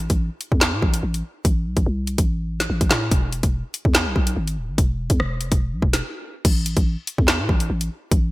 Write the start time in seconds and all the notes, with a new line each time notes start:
0.10 A1, kick, closed hi-hat
0.41 closed hi-hat
0.52 E2, kick
0.61 snare, clap, closed hi-hat
0.72 A2
0.82 A1, kick
0.94 closed hi-hat
1.03 A1
1.14 closed hi-hat
1.45 A1, kick, closed hi-hat
1.66 B1
1.77 A1, kick, closed hi-hat
1.86 C2
2.07 closed hi-hat
2.18 A1, kick, closed hi-hat
2.60 snare, closed hi-hat
2.70 A1
2.81 A1, kick, closed hi-hat
2.91 A2, snare, clap, closed hi-hat
3.11 E1, kick, closed hi-hat
3.33 closed hi-hat
3.43 E1, kick, closed hi-hat
3.74 closed hi-hat
3.85 E2, kick
3.95 snare, clap, closed hi-hat
4.06 B1
4.16 B1, kick
4.27 closed hi-hat
4.36 G#1
4.47 closed hi-hat
4.57 D1
4.68 G#1
4.78 E1, kick, closed hi-hat
5.10 E2, kick, closed hi-hat
5.20 E1, cross-stick
5.41 F1, closed hi-hat
5.52 E1, kick, closed hi-hat
5.72 B1
5.82 E1, kick
5.93 snare, closed hi-hat
6.45 A1, kick, closed hi-hat, crash
6.66 closed hi-hat
6.77 A1, kick, closed hi-hat
7.07 closed hi-hat
7.18 E2, kick
7.28 snare, clap, closed hi-hat
7.39 A2
7.49 A1, kick
7.60 closed hi-hat
7.70 A1
7.81 closed hi-hat
8.11 A1, kick, closed hi-hat